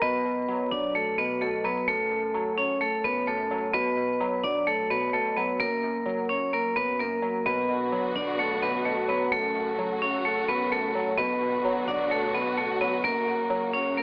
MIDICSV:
0, 0, Header, 1, 5, 480
1, 0, Start_track
1, 0, Key_signature, 2, "minor"
1, 0, Tempo, 465116
1, 18, Time_signature, 4, 2, 24, 8
1, 14476, End_track
2, 0, Start_track
2, 0, Title_t, "Vibraphone"
2, 0, Program_c, 0, 11
2, 17, Note_on_c, 0, 59, 116
2, 25, Note_on_c, 0, 71, 88
2, 696, Note_off_c, 0, 59, 0
2, 700, Note_off_c, 0, 71, 0
2, 738, Note_on_c, 0, 62, 89
2, 745, Note_on_c, 0, 74, 68
2, 953, Note_off_c, 0, 62, 0
2, 957, Note_off_c, 0, 74, 0
2, 981, Note_on_c, 0, 57, 87
2, 989, Note_on_c, 0, 69, 65
2, 1195, Note_off_c, 0, 57, 0
2, 1199, Note_off_c, 0, 69, 0
2, 1217, Note_on_c, 0, 59, 87
2, 1225, Note_on_c, 0, 71, 68
2, 1433, Note_off_c, 0, 59, 0
2, 1438, Note_off_c, 0, 71, 0
2, 1455, Note_on_c, 0, 57, 70
2, 1463, Note_on_c, 0, 69, 60
2, 1672, Note_off_c, 0, 57, 0
2, 1676, Note_off_c, 0, 69, 0
2, 1699, Note_on_c, 0, 59, 78
2, 1707, Note_on_c, 0, 71, 66
2, 1914, Note_off_c, 0, 59, 0
2, 1919, Note_off_c, 0, 71, 0
2, 1939, Note_on_c, 0, 57, 113
2, 1947, Note_on_c, 0, 69, 89
2, 2617, Note_off_c, 0, 57, 0
2, 2621, Note_off_c, 0, 69, 0
2, 2659, Note_on_c, 0, 61, 92
2, 2667, Note_on_c, 0, 73, 62
2, 2874, Note_off_c, 0, 61, 0
2, 2878, Note_off_c, 0, 73, 0
2, 2899, Note_on_c, 0, 57, 88
2, 2908, Note_on_c, 0, 69, 65
2, 3114, Note_off_c, 0, 57, 0
2, 3119, Note_off_c, 0, 69, 0
2, 3137, Note_on_c, 0, 59, 93
2, 3146, Note_on_c, 0, 71, 69
2, 3353, Note_off_c, 0, 59, 0
2, 3358, Note_off_c, 0, 71, 0
2, 3378, Note_on_c, 0, 57, 86
2, 3386, Note_on_c, 0, 69, 66
2, 3829, Note_off_c, 0, 57, 0
2, 3833, Note_off_c, 0, 69, 0
2, 3854, Note_on_c, 0, 59, 101
2, 3862, Note_on_c, 0, 71, 92
2, 4535, Note_off_c, 0, 59, 0
2, 4538, Note_off_c, 0, 71, 0
2, 4576, Note_on_c, 0, 62, 84
2, 4585, Note_on_c, 0, 74, 76
2, 4793, Note_off_c, 0, 62, 0
2, 4797, Note_off_c, 0, 74, 0
2, 4817, Note_on_c, 0, 57, 86
2, 4825, Note_on_c, 0, 69, 69
2, 5033, Note_off_c, 0, 57, 0
2, 5037, Note_off_c, 0, 69, 0
2, 5060, Note_on_c, 0, 59, 82
2, 5068, Note_on_c, 0, 71, 66
2, 5274, Note_off_c, 0, 59, 0
2, 5279, Note_off_c, 0, 71, 0
2, 5294, Note_on_c, 0, 57, 81
2, 5302, Note_on_c, 0, 69, 57
2, 5511, Note_off_c, 0, 57, 0
2, 5516, Note_off_c, 0, 69, 0
2, 5537, Note_on_c, 0, 59, 79
2, 5545, Note_on_c, 0, 71, 62
2, 5753, Note_off_c, 0, 59, 0
2, 5758, Note_off_c, 0, 71, 0
2, 5776, Note_on_c, 0, 58, 106
2, 5784, Note_on_c, 0, 70, 91
2, 6455, Note_off_c, 0, 58, 0
2, 6459, Note_off_c, 0, 70, 0
2, 6495, Note_on_c, 0, 61, 91
2, 6503, Note_on_c, 0, 73, 68
2, 6712, Note_off_c, 0, 61, 0
2, 6716, Note_off_c, 0, 73, 0
2, 6739, Note_on_c, 0, 58, 86
2, 6747, Note_on_c, 0, 70, 65
2, 6954, Note_off_c, 0, 58, 0
2, 6958, Note_off_c, 0, 70, 0
2, 6977, Note_on_c, 0, 59, 86
2, 6985, Note_on_c, 0, 71, 76
2, 7193, Note_off_c, 0, 59, 0
2, 7197, Note_off_c, 0, 71, 0
2, 7218, Note_on_c, 0, 58, 96
2, 7226, Note_on_c, 0, 70, 73
2, 7669, Note_off_c, 0, 58, 0
2, 7674, Note_off_c, 0, 70, 0
2, 7697, Note_on_c, 0, 59, 114
2, 7705, Note_on_c, 0, 71, 89
2, 8376, Note_off_c, 0, 59, 0
2, 8380, Note_off_c, 0, 71, 0
2, 8416, Note_on_c, 0, 62, 92
2, 8425, Note_on_c, 0, 74, 65
2, 8633, Note_off_c, 0, 62, 0
2, 8637, Note_off_c, 0, 74, 0
2, 8661, Note_on_c, 0, 57, 86
2, 8669, Note_on_c, 0, 69, 64
2, 8875, Note_off_c, 0, 57, 0
2, 8879, Note_off_c, 0, 69, 0
2, 8897, Note_on_c, 0, 59, 82
2, 8906, Note_on_c, 0, 71, 68
2, 9113, Note_off_c, 0, 59, 0
2, 9118, Note_off_c, 0, 71, 0
2, 9134, Note_on_c, 0, 57, 70
2, 9143, Note_on_c, 0, 69, 61
2, 9351, Note_off_c, 0, 57, 0
2, 9356, Note_off_c, 0, 69, 0
2, 9378, Note_on_c, 0, 59, 80
2, 9387, Note_on_c, 0, 71, 65
2, 9594, Note_off_c, 0, 59, 0
2, 9598, Note_off_c, 0, 71, 0
2, 9618, Note_on_c, 0, 57, 111
2, 9627, Note_on_c, 0, 69, 90
2, 10297, Note_off_c, 0, 57, 0
2, 10301, Note_off_c, 0, 69, 0
2, 10339, Note_on_c, 0, 61, 91
2, 10347, Note_on_c, 0, 73, 62
2, 10554, Note_off_c, 0, 61, 0
2, 10559, Note_off_c, 0, 73, 0
2, 10578, Note_on_c, 0, 57, 83
2, 10587, Note_on_c, 0, 69, 66
2, 10794, Note_off_c, 0, 57, 0
2, 10799, Note_off_c, 0, 69, 0
2, 10818, Note_on_c, 0, 59, 92
2, 10826, Note_on_c, 0, 71, 67
2, 11033, Note_off_c, 0, 59, 0
2, 11038, Note_off_c, 0, 71, 0
2, 11059, Note_on_c, 0, 57, 92
2, 11067, Note_on_c, 0, 69, 67
2, 11509, Note_off_c, 0, 57, 0
2, 11514, Note_off_c, 0, 69, 0
2, 11534, Note_on_c, 0, 59, 103
2, 11542, Note_on_c, 0, 71, 88
2, 12214, Note_off_c, 0, 59, 0
2, 12219, Note_off_c, 0, 71, 0
2, 12257, Note_on_c, 0, 62, 88
2, 12266, Note_on_c, 0, 74, 75
2, 12473, Note_off_c, 0, 62, 0
2, 12478, Note_off_c, 0, 74, 0
2, 12498, Note_on_c, 0, 57, 86
2, 12506, Note_on_c, 0, 69, 70
2, 12713, Note_off_c, 0, 57, 0
2, 12718, Note_off_c, 0, 69, 0
2, 12740, Note_on_c, 0, 59, 84
2, 12749, Note_on_c, 0, 71, 70
2, 12955, Note_off_c, 0, 59, 0
2, 12959, Note_off_c, 0, 71, 0
2, 12975, Note_on_c, 0, 57, 80
2, 12983, Note_on_c, 0, 69, 57
2, 13192, Note_off_c, 0, 57, 0
2, 13196, Note_off_c, 0, 69, 0
2, 13219, Note_on_c, 0, 59, 76
2, 13226, Note_on_c, 0, 71, 59
2, 13434, Note_off_c, 0, 59, 0
2, 13438, Note_off_c, 0, 71, 0
2, 13458, Note_on_c, 0, 58, 110
2, 13466, Note_on_c, 0, 70, 89
2, 14136, Note_off_c, 0, 58, 0
2, 14141, Note_off_c, 0, 70, 0
2, 14176, Note_on_c, 0, 61, 92
2, 14184, Note_on_c, 0, 73, 65
2, 14392, Note_off_c, 0, 61, 0
2, 14397, Note_off_c, 0, 73, 0
2, 14420, Note_on_c, 0, 58, 87
2, 14428, Note_on_c, 0, 70, 64
2, 14476, Note_off_c, 0, 58, 0
2, 14476, Note_off_c, 0, 70, 0
2, 14476, End_track
3, 0, Start_track
3, 0, Title_t, "String section"
3, 0, Program_c, 1, 48
3, 7698, Note_on_c, 1, 50, 84
3, 7699, Note_on_c, 1, 59, 77
3, 7699, Note_on_c, 1, 66, 91
3, 9599, Note_off_c, 1, 50, 0
3, 9599, Note_off_c, 1, 59, 0
3, 9599, Note_off_c, 1, 66, 0
3, 9617, Note_on_c, 1, 57, 77
3, 9617, Note_on_c, 1, 66, 90
3, 9618, Note_on_c, 1, 49, 82
3, 11518, Note_off_c, 1, 49, 0
3, 11518, Note_off_c, 1, 57, 0
3, 11518, Note_off_c, 1, 66, 0
3, 11536, Note_on_c, 1, 59, 74
3, 11537, Note_on_c, 1, 50, 83
3, 11537, Note_on_c, 1, 66, 93
3, 13438, Note_off_c, 1, 50, 0
3, 13438, Note_off_c, 1, 59, 0
3, 13457, Note_on_c, 1, 49, 85
3, 13457, Note_on_c, 1, 58, 76
3, 14476, Note_off_c, 1, 49, 0
3, 14476, Note_off_c, 1, 58, 0
3, 14476, Note_off_c, 1, 66, 0
3, 14476, End_track
4, 0, Start_track
4, 0, Title_t, "Synth keys"
4, 0, Program_c, 2, 88
4, 16, Note_on_c, 2, 47, 98
4, 193, Control_c, 2, 64, 127
4, 246, Note_off_c, 2, 47, 0
4, 258, Note_on_c, 2, 47, 85
4, 498, Note_on_c, 2, 54, 88
4, 1208, Note_off_c, 2, 47, 0
4, 1220, Note_on_c, 2, 47, 73
4, 1446, Note_off_c, 2, 47, 0
4, 1458, Note_on_c, 2, 47, 83
4, 1681, Note_off_c, 2, 54, 0
4, 1693, Note_on_c, 2, 54, 90
4, 1936, Note_off_c, 2, 54, 0
4, 1936, Note_on_c, 2, 42, 95
4, 1938, Note_off_c, 2, 47, 0
4, 1953, Control_c, 2, 64, 0
4, 2099, Control_c, 2, 64, 127
4, 2169, Note_off_c, 2, 42, 0
4, 2182, Note_on_c, 2, 42, 85
4, 2419, Note_on_c, 2, 54, 91
4, 3128, Note_off_c, 2, 42, 0
4, 3140, Note_on_c, 2, 42, 76
4, 3363, Note_off_c, 2, 42, 0
4, 3376, Note_on_c, 2, 42, 89
4, 3608, Note_off_c, 2, 54, 0
4, 3620, Note_on_c, 2, 54, 90
4, 3857, Note_off_c, 2, 42, 0
4, 3857, Note_on_c, 2, 47, 97
4, 3859, Note_off_c, 2, 54, 0
4, 3872, Control_c, 2, 64, 0
4, 4075, Control_c, 2, 64, 127
4, 4082, Note_off_c, 2, 47, 0
4, 4094, Note_on_c, 2, 47, 81
4, 4339, Note_on_c, 2, 54, 99
4, 5047, Note_off_c, 2, 47, 0
4, 5060, Note_on_c, 2, 47, 78
4, 5286, Note_off_c, 2, 47, 0
4, 5298, Note_on_c, 2, 47, 81
4, 5529, Note_off_c, 2, 54, 0
4, 5541, Note_on_c, 2, 54, 89
4, 5778, Note_off_c, 2, 47, 0
4, 5779, Note_off_c, 2, 54, 0
4, 5779, Note_on_c, 2, 42, 91
4, 5792, Control_c, 2, 64, 0
4, 5990, Control_c, 2, 64, 127
4, 6009, Note_off_c, 2, 42, 0
4, 6021, Note_on_c, 2, 42, 83
4, 6251, Note_on_c, 2, 54, 91
4, 6968, Note_off_c, 2, 42, 0
4, 6981, Note_on_c, 2, 42, 74
4, 7210, Note_off_c, 2, 42, 0
4, 7222, Note_on_c, 2, 42, 82
4, 7441, Note_off_c, 2, 54, 0
4, 7453, Note_on_c, 2, 54, 83
4, 7695, Note_on_c, 2, 47, 98
4, 7696, Note_off_c, 2, 54, 0
4, 7700, Note_off_c, 2, 42, 0
4, 7712, Control_c, 2, 64, 0
4, 7890, Control_c, 2, 64, 127
4, 7925, Note_off_c, 2, 47, 0
4, 7938, Note_on_c, 2, 47, 88
4, 8177, Note_on_c, 2, 54, 91
4, 8888, Note_off_c, 2, 47, 0
4, 8900, Note_on_c, 2, 47, 76
4, 9125, Note_off_c, 2, 47, 0
4, 9137, Note_on_c, 2, 47, 83
4, 9361, Note_off_c, 2, 54, 0
4, 9373, Note_on_c, 2, 54, 88
4, 9615, Note_off_c, 2, 54, 0
4, 9616, Note_on_c, 2, 42, 95
4, 9618, Note_off_c, 2, 47, 0
4, 9628, Control_c, 2, 64, 0
4, 9792, Control_c, 2, 64, 127
4, 9849, Note_off_c, 2, 42, 0
4, 9861, Note_on_c, 2, 42, 83
4, 10099, Note_on_c, 2, 54, 88
4, 10808, Note_off_c, 2, 42, 0
4, 10820, Note_on_c, 2, 42, 73
4, 11044, Note_off_c, 2, 42, 0
4, 11057, Note_on_c, 2, 42, 87
4, 11289, Note_off_c, 2, 54, 0
4, 11301, Note_on_c, 2, 54, 92
4, 11537, Note_off_c, 2, 42, 0
4, 11538, Note_on_c, 2, 47, 95
4, 11539, Note_off_c, 2, 54, 0
4, 11552, Control_c, 2, 64, 0
4, 11756, Control_c, 2, 64, 127
4, 11762, Note_off_c, 2, 47, 0
4, 11774, Note_on_c, 2, 47, 86
4, 12018, Note_on_c, 2, 54, 100
4, 12727, Note_off_c, 2, 47, 0
4, 12740, Note_on_c, 2, 47, 77
4, 12965, Note_off_c, 2, 47, 0
4, 12977, Note_on_c, 2, 47, 82
4, 13209, Note_off_c, 2, 54, 0
4, 13221, Note_on_c, 2, 54, 90
4, 13457, Note_off_c, 2, 47, 0
4, 13459, Note_off_c, 2, 54, 0
4, 13459, Note_on_c, 2, 42, 91
4, 13469, Control_c, 2, 64, 0
4, 13664, Control_c, 2, 64, 127
4, 13689, Note_off_c, 2, 42, 0
4, 13701, Note_on_c, 2, 42, 86
4, 13932, Note_on_c, 2, 54, 90
4, 14476, Note_off_c, 2, 42, 0
4, 14476, Note_off_c, 2, 54, 0
4, 14476, End_track
5, 0, Start_track
5, 0, Title_t, "808-style bass"
5, 0, Program_c, 3, 38
5, 17, Note_on_c, 3, 35, 114
5, 478, Note_off_c, 3, 35, 0
5, 738, Note_on_c, 3, 35, 108
5, 1896, Note_off_c, 3, 35, 0
5, 1938, Note_on_c, 3, 30, 115
5, 2629, Note_off_c, 3, 30, 0
5, 3138, Note_on_c, 3, 30, 102
5, 3829, Note_off_c, 3, 30, 0
5, 3858, Note_on_c, 3, 35, 109
5, 4549, Note_off_c, 3, 35, 0
5, 4577, Note_on_c, 3, 35, 102
5, 5269, Note_off_c, 3, 35, 0
5, 5778, Note_on_c, 3, 30, 111
5, 6469, Note_off_c, 3, 30, 0
5, 6978, Note_on_c, 3, 30, 107
5, 7438, Note_off_c, 3, 30, 0
5, 7697, Note_on_c, 3, 35, 116
5, 8158, Note_off_c, 3, 35, 0
5, 8418, Note_on_c, 3, 35, 104
5, 9576, Note_off_c, 3, 35, 0
5, 9618, Note_on_c, 3, 30, 112
5, 10309, Note_off_c, 3, 30, 0
5, 10817, Note_on_c, 3, 30, 106
5, 11509, Note_off_c, 3, 30, 0
5, 11537, Note_on_c, 3, 35, 112
5, 12229, Note_off_c, 3, 35, 0
5, 12257, Note_on_c, 3, 35, 104
5, 12949, Note_off_c, 3, 35, 0
5, 13457, Note_on_c, 3, 30, 114
5, 14149, Note_off_c, 3, 30, 0
5, 14476, End_track
0, 0, End_of_file